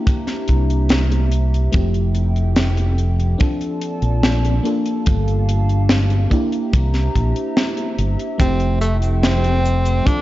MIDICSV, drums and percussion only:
0, 0, Header, 1, 2, 480
1, 0, Start_track
1, 0, Key_signature, -1, "major"
1, 0, Tempo, 833333
1, 998, Time_signature, 4, 2, 24, 8
1, 5884, End_track
2, 0, Start_track
2, 0, Title_t, "Drums"
2, 40, Note_on_c, 9, 36, 120
2, 40, Note_on_c, 9, 42, 90
2, 97, Note_off_c, 9, 36, 0
2, 98, Note_off_c, 9, 42, 0
2, 156, Note_on_c, 9, 38, 38
2, 159, Note_on_c, 9, 42, 51
2, 214, Note_off_c, 9, 38, 0
2, 216, Note_off_c, 9, 42, 0
2, 275, Note_on_c, 9, 42, 79
2, 282, Note_on_c, 9, 36, 54
2, 332, Note_off_c, 9, 42, 0
2, 340, Note_off_c, 9, 36, 0
2, 403, Note_on_c, 9, 42, 56
2, 461, Note_off_c, 9, 42, 0
2, 514, Note_on_c, 9, 42, 99
2, 520, Note_on_c, 9, 38, 122
2, 572, Note_off_c, 9, 42, 0
2, 577, Note_off_c, 9, 38, 0
2, 643, Note_on_c, 9, 42, 56
2, 701, Note_off_c, 9, 42, 0
2, 758, Note_on_c, 9, 42, 82
2, 816, Note_off_c, 9, 42, 0
2, 888, Note_on_c, 9, 42, 49
2, 946, Note_off_c, 9, 42, 0
2, 993, Note_on_c, 9, 42, 107
2, 1003, Note_on_c, 9, 36, 111
2, 1051, Note_off_c, 9, 42, 0
2, 1061, Note_off_c, 9, 36, 0
2, 1119, Note_on_c, 9, 42, 50
2, 1176, Note_off_c, 9, 42, 0
2, 1236, Note_on_c, 9, 42, 69
2, 1294, Note_off_c, 9, 42, 0
2, 1359, Note_on_c, 9, 42, 56
2, 1417, Note_off_c, 9, 42, 0
2, 1474, Note_on_c, 9, 42, 94
2, 1477, Note_on_c, 9, 38, 118
2, 1532, Note_off_c, 9, 42, 0
2, 1534, Note_off_c, 9, 38, 0
2, 1597, Note_on_c, 9, 42, 55
2, 1655, Note_off_c, 9, 42, 0
2, 1718, Note_on_c, 9, 42, 59
2, 1776, Note_off_c, 9, 42, 0
2, 1842, Note_on_c, 9, 42, 53
2, 1899, Note_off_c, 9, 42, 0
2, 1958, Note_on_c, 9, 42, 87
2, 1963, Note_on_c, 9, 36, 125
2, 2016, Note_off_c, 9, 42, 0
2, 2021, Note_off_c, 9, 36, 0
2, 2079, Note_on_c, 9, 42, 55
2, 2137, Note_off_c, 9, 42, 0
2, 2197, Note_on_c, 9, 42, 80
2, 2255, Note_off_c, 9, 42, 0
2, 2316, Note_on_c, 9, 42, 51
2, 2373, Note_off_c, 9, 42, 0
2, 2438, Note_on_c, 9, 42, 89
2, 2439, Note_on_c, 9, 38, 117
2, 2496, Note_off_c, 9, 38, 0
2, 2496, Note_off_c, 9, 42, 0
2, 2561, Note_on_c, 9, 42, 57
2, 2619, Note_off_c, 9, 42, 0
2, 2681, Note_on_c, 9, 42, 74
2, 2738, Note_off_c, 9, 42, 0
2, 2797, Note_on_c, 9, 42, 60
2, 2855, Note_off_c, 9, 42, 0
2, 2915, Note_on_c, 9, 42, 93
2, 2920, Note_on_c, 9, 36, 122
2, 2973, Note_off_c, 9, 42, 0
2, 2978, Note_off_c, 9, 36, 0
2, 3040, Note_on_c, 9, 42, 53
2, 3098, Note_off_c, 9, 42, 0
2, 3161, Note_on_c, 9, 42, 78
2, 3218, Note_off_c, 9, 42, 0
2, 3279, Note_on_c, 9, 42, 52
2, 3337, Note_off_c, 9, 42, 0
2, 3394, Note_on_c, 9, 38, 124
2, 3399, Note_on_c, 9, 42, 100
2, 3452, Note_off_c, 9, 38, 0
2, 3457, Note_off_c, 9, 42, 0
2, 3514, Note_on_c, 9, 42, 55
2, 3572, Note_off_c, 9, 42, 0
2, 3636, Note_on_c, 9, 36, 66
2, 3638, Note_on_c, 9, 42, 54
2, 3693, Note_off_c, 9, 36, 0
2, 3696, Note_off_c, 9, 42, 0
2, 3757, Note_on_c, 9, 42, 56
2, 3815, Note_off_c, 9, 42, 0
2, 3878, Note_on_c, 9, 42, 99
2, 3879, Note_on_c, 9, 36, 117
2, 3936, Note_off_c, 9, 36, 0
2, 3936, Note_off_c, 9, 42, 0
2, 3996, Note_on_c, 9, 42, 51
2, 3997, Note_on_c, 9, 38, 37
2, 4054, Note_off_c, 9, 42, 0
2, 4055, Note_off_c, 9, 38, 0
2, 4121, Note_on_c, 9, 36, 58
2, 4123, Note_on_c, 9, 42, 69
2, 4179, Note_off_c, 9, 36, 0
2, 4181, Note_off_c, 9, 42, 0
2, 4239, Note_on_c, 9, 42, 54
2, 4296, Note_off_c, 9, 42, 0
2, 4358, Note_on_c, 9, 42, 87
2, 4359, Note_on_c, 9, 38, 113
2, 4416, Note_off_c, 9, 38, 0
2, 4416, Note_off_c, 9, 42, 0
2, 4475, Note_on_c, 9, 42, 54
2, 4533, Note_off_c, 9, 42, 0
2, 4599, Note_on_c, 9, 42, 78
2, 4657, Note_off_c, 9, 42, 0
2, 4720, Note_on_c, 9, 42, 55
2, 4777, Note_off_c, 9, 42, 0
2, 4836, Note_on_c, 9, 36, 107
2, 4840, Note_on_c, 9, 42, 103
2, 4842, Note_on_c, 9, 69, 49
2, 4894, Note_off_c, 9, 36, 0
2, 4898, Note_off_c, 9, 42, 0
2, 4900, Note_off_c, 9, 69, 0
2, 4953, Note_on_c, 9, 42, 54
2, 5011, Note_off_c, 9, 42, 0
2, 5078, Note_on_c, 9, 42, 66
2, 5078, Note_on_c, 9, 69, 74
2, 5135, Note_off_c, 9, 42, 0
2, 5136, Note_off_c, 9, 69, 0
2, 5196, Note_on_c, 9, 42, 54
2, 5201, Note_on_c, 9, 69, 48
2, 5253, Note_off_c, 9, 42, 0
2, 5259, Note_off_c, 9, 69, 0
2, 5319, Note_on_c, 9, 38, 114
2, 5320, Note_on_c, 9, 69, 42
2, 5323, Note_on_c, 9, 42, 88
2, 5377, Note_off_c, 9, 38, 0
2, 5378, Note_off_c, 9, 69, 0
2, 5381, Note_off_c, 9, 42, 0
2, 5439, Note_on_c, 9, 42, 55
2, 5497, Note_off_c, 9, 42, 0
2, 5561, Note_on_c, 9, 69, 69
2, 5562, Note_on_c, 9, 42, 48
2, 5619, Note_off_c, 9, 69, 0
2, 5620, Note_off_c, 9, 42, 0
2, 5676, Note_on_c, 9, 42, 51
2, 5680, Note_on_c, 9, 69, 53
2, 5733, Note_off_c, 9, 42, 0
2, 5738, Note_off_c, 9, 69, 0
2, 5799, Note_on_c, 9, 36, 108
2, 5799, Note_on_c, 9, 42, 91
2, 5800, Note_on_c, 9, 69, 43
2, 5857, Note_off_c, 9, 36, 0
2, 5857, Note_off_c, 9, 42, 0
2, 5858, Note_off_c, 9, 69, 0
2, 5884, End_track
0, 0, End_of_file